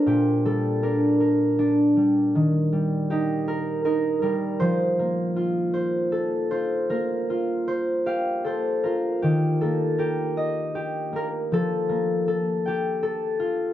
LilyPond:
\new Staff \with { instrumentName = "Harp" } { \time 3/4 \key ees \lydian \tempo 4 = 79 << { g'8 a'8 bes'4 r4 | r4 g'4 bes'8 bes'8 | c''2~ c''8 c''8 | bes'4. g'8 a'8 bes'8 |
g'8 a'8 bes'4 r8 bes'8 | a'4. g'8 r4 | } \\ { bes,8 g8 d'8 bes'8 d'8 g8 | ees8 g8 ees'8 bes'8 ees'8 g8 | f8 bes8 f'8 c''8 a'8 f'8 | bes8 f'8 c''8 f''8 c''8 f'8 |
ees8 bes8 g'8 ees''8 g'8 bes8 | f8 bes8 a'8 g''8 a'8 f'8 | } >> }